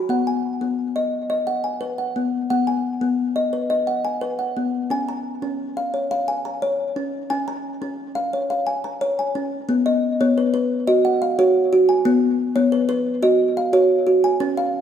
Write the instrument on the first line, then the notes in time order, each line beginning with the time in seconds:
kalimba
Already playing: B5
0.09 B3 F#5
0.27 G#5
0.61 B3
0.96 D#5
1.30 D#5
1.47 F#5
1.64 G#5
1.81 B4
1.98 F#5
2.16 B3
2.50 B3 F#5
2.67 G#5
3.01 B3
3.36 D#5
3.53 B4
3.70 D#5
3.87 F#5
4.05 G#5
4.21 B4
4.39 F#5
4.57 B3
4.90 C#4 G#5
5.09 A#5
5.42 C#4
5.77 F5
5.94 C#5
6.11 F5
6.28 G#5
6.45 A#5
6.62 C#5
6.96 C#4
7.30 C#4 G#5
7.48 A#5
7.82 C#4
8.15 F5
8.33 C#5
8.50 F5
8.67 G#5
8.84 A#5
9.01 C#5
9.19 G#5
9.35 C#4
9.69 B3
9.86 D#5
10.21 B3 C#5
10.38 B4
10.54 B4
10.87 F#4 D#5
11.05 F#5
11.22 F5
11.39 F#4 C#5
11.73 F#4
11.89 G#5
12.05 B3
12.56 B3 C#5
12.72 B4
12.89 B4
13.23 F#4 D#5
13.57 F5
13.73 F#4 C#5
14.07 F#4
14.24 G#5
14.40 C#4
14.57 F5